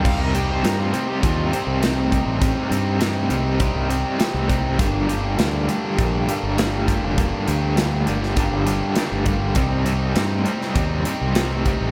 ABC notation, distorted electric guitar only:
X:1
M:4/4
L:1/8
Q:1/4=101
K:Cdor
V:1 name="Distorted electric guitar"
[C,G,CEG] [C,G,CEG] [C,G,CEG] [C,G,CEG] [C,G,CEG] [C,G,CEG] [C,G,CEG] [C,G,CEG] | [C,G,CEG] [C,G,CEG] [C,G,CEG] [C,G,CEG] [C,G,CEG] [C,G,CEG] [C,G,CEG] [C,G,CEG] | [G,,D,G,B,DG] [G,,D,G,B,DG] [G,,D,G,B,DG] [G,,D,G,B,DG] [G,,D,G,B,DG] [G,,D,G,B,DG] [G,,D,G,B,DG] [G,,D,G,B,DG] | [G,,D,G,B,DG] [G,,D,G,B,DG] [G,,D,G,B,DG] [G,,D,G,B,DG] [G,,D,G,B,DG] [G,,D,G,B,DG] [G,,D,G,B,DG] [G,,D,G,B,DG] |
[C,G,CEG] [C,G,CEG] [C,G,CEG] [C,G,CEG] [C,G,CEG] [C,G,CEG] [C,G,CEG] [C,G,CEG] |]